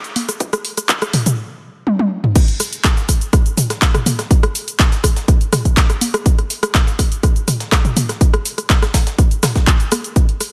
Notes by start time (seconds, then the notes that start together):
0.04 closed hi-hat, cabasa
0.16 open hi-hat, high conga
0.29 cross-stick, closed hi-hat, cabasa
0.40 kick, closed hi-hat, cabasa
0.53 cross-stick, closed hi-hat, cabasa
0.65 open hi-hat
0.77 cross-stick, closed hi-hat, cabasa
0.89 kick, clap, closed hi-hat, cabasa
1.02 cross-stick, closed hi-hat, cabasa
1.13 mid tom, open hi-hat
1.26 closed hi-hat, mid tom, cabasa
1.87 high tom
1.99 high tom
2.24 mid tom
2.36 kick, closed hi-hat, crash, cabasa
2.48 closed hi-hat
2.60 cross-stick, closed hi-hat, open hi-hat, cabasa
2.73 closed hi-hat, cabasa
2.84 kick, cross-stick, snare, clap, closed hi-hat, cabasa
2.97 snare, cabasa
3.09 kick, cross-stick, closed hi-hat, open hi-hat, cabasa
3.21 closed hi-hat, cabasa
3.33 kick, cross-stick, closed hi-hat, cabasa
3.46 closed hi-hat, cabasa
3.57 closed hi-hat, mid tom, open hi-hat, cabasa
3.70 cross-stick, snare, closed hi-hat, cabasa
3.82 kick, snare, clap, closed hi-hat, cabasa
3.94 cross-stick, closed hi-hat, mid tom, cabasa
4.06 closed hi-hat, mid tom, open hi-hat, high conga, cabasa
4.19 cross-stick, snare, closed hi-hat, cabasa
4.31 kick, closed hi-hat, cabasa
4.43 cross-stick, closed hi-hat
4.55 closed hi-hat, open hi-hat, cabasa
4.68 closed hi-hat, cabasa
4.79 kick, cross-stick, snare, clap, closed hi-hat, cabasa
4.92 snare, closed hi-hat, cabasa
5.04 kick, cross-stick, closed hi-hat, open hi-hat, cabasa
5.16 snare, closed hi-hat, cabasa
5.28 kick, cross-stick, closed hi-hat, cabasa
5.41 closed hi-hat, cabasa
5.53 cross-stick, mid tom, open hi-hat, cabasa
5.65 kick, closed hi-hat, cabasa
5.77 kick, snare, clap, closed hi-hat, cabasa
5.90 cross-stick, closed hi-hat, cabasa
6.01 closed hi-hat, open hi-hat, high conga, cabasa
6.14 cross-stick, closed hi-hat, cabasa
6.26 kick, closed hi-hat, cabasa
6.38 cross-stick, closed hi-hat
6.50 closed hi-hat, open hi-hat, cabasa
6.63 cross-stick, closed hi-hat, cabasa
6.74 kick, snare, clap, closed hi-hat, cabasa
6.87 snare, cabasa
6.99 kick, cross-stick, closed hi-hat, open hi-hat, cabasa
7.12 closed hi-hat, cabasa
7.23 kick, cross-stick, closed hi-hat, cabasa
7.36 closed hi-hat, cabasa
7.48 cross-stick, closed hi-hat, mid tom, open hi-hat, cabasa
7.60 snare, closed hi-hat, cabasa
7.72 kick, cross-stick, snare, clap, closed hi-hat, cabasa
7.85 closed hi-hat, mid tom, cabasa
7.96 closed hi-hat, mid tom, open hi-hat, high conga, cabasa
8.09 cross-stick, snare, closed hi-hat, cabasa
8.21 kick, closed hi-hat, cabasa
8.34 cross-stick, closed hi-hat
8.45 closed hi-hat, open hi-hat, cabasa
8.58 cross-stick, closed hi-hat, cabasa
8.70 kick, snare, clap, closed hi-hat, cabasa
8.82 cross-stick, snare, closed hi-hat, cabasa
8.94 kick, snare, closed hi-hat, open hi-hat, cabasa
9.07 snare, closed hi-hat, cabasa
9.18 kick, cross-stick, closed hi-hat, cabasa
9.31 closed hi-hat, cabasa
9.43 cross-stick, snare, closed hi-hat, mid tom, open hi-hat, cabasa
9.55 kick, snare, closed hi-hat, cabasa
9.67 kick, cross-stick, clap, closed hi-hat, cabasa
9.80 closed hi-hat, cabasa
9.92 cross-stick, closed hi-hat, open hi-hat, high conga, cabasa
10.04 closed hi-hat, cabasa
10.16 kick, closed hi-hat, cabasa
10.29 closed hi-hat
10.40 cross-stick, closed hi-hat, open hi-hat, cabasa